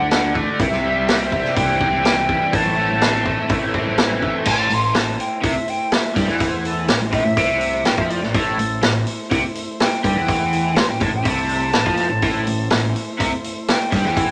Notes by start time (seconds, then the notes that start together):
Already playing: D2 A3 D4 F#4 D5
0.10 D3 F#5, snare, open hi-hat
0.33 A3 D5, kick, low conga
0.59 C2 C3 C4 G4 E5, kick, open hi-hat
0.71 snare, high conga
0.84 G3
0.96 high conga
1.07 C4, snare, open hi-hat
1.31 G3 E5, kick, low conga
1.45 snare
1.55 C2 E3 G5, kick, open hi-hat
1.81 C4, kick
1.92 high conga
2.05 E3, snare, open hi-hat
2.29 G3, kick, low conga
2.53 A1 A2 A4 A5, kick, open hi-hat
2.65 high conga
2.77 A3
2.90 high conga
3.00 C4, snare, open hi-hat
3.26 A3, kick, low conga
3.48 A1 E3, kick, open hi-hat, high conga
3.74 C4, kick
3.87 high conga, low conga
3.98 E3, snare, open hi-hat
4.11 high conga
4.22 A3, kick, low conga
4.45 A1 A2 A3 E4 C5 A5, kick, crash
4.70 A1 A2 C6, open hi-hat
4.94 A1 A2 A5, snare, open hi-hat
5.20 G5, open hi-hat
5.42 C2 C3 E5, kick, open hi-hat
5.68 G5, open hi-hat
5.92 E5, snare, open hi-hat
6.16 G2 G3 D5, kick, snare, open hi-hat
6.28 E2 E3, snare
6.40 C5, kick, open hi-hat
6.65 A4, open hi-hat
6.88 A1 A2, snare, open hi-hat
7.00 A1 A2
7.12 A1 A2 E5, kick, open hi-hat
7.24 A1 A2
7.37 C2 C3, kick, open hi-hat
7.61 open hi-hat
7.85 A1 A2 G5, snare, open hi-hat
7.98 F2 F3 E5, kick
8.10 D5, open hi-hat
8.22 A1 A2, snare
8.34 A1 A2 A4, kick, open hi-hat
8.58 A1 A2, open hi-hat
8.82 A1 A2, snare, open hi-hat
9.07 open hi-hat
9.31 C2 C3, kick, open hi-hat
9.55 open hi-hat
9.80 G5, snare, open hi-hat
10.04 G2 G3 G5, kick, open hi-hat
10.15 E2 E3
10.28 kick, open hi-hat
10.53 open hi-hat
10.75 A1 A2 C6, snare, open hi-hat
10.88 A1 A2 G5
11.00 A1 A2 A5, kick, open hi-hat
11.13 A1 A2 G5
11.23 C2 C3 A5, kick, open hi-hat
11.49 open hi-hat
11.73 A1 A2, snare, open hi-hat
11.85 F2 F3, kick
11.97 snare, open hi-hat
12.10 A1 A2
12.22 A1 A2, kick, open hi-hat
12.47 A1 A2, open hi-hat
12.70 A1 A2, snare, open hi-hat
12.96 open hi-hat
13.19 C2 C3, kick, open hi-hat
13.44 open hi-hat
13.68 G5, snare, open hi-hat
13.92 G2 G3 G5, kick, snare, open hi-hat
14.05 E2 E3, snare
14.17 kick, open hi-hat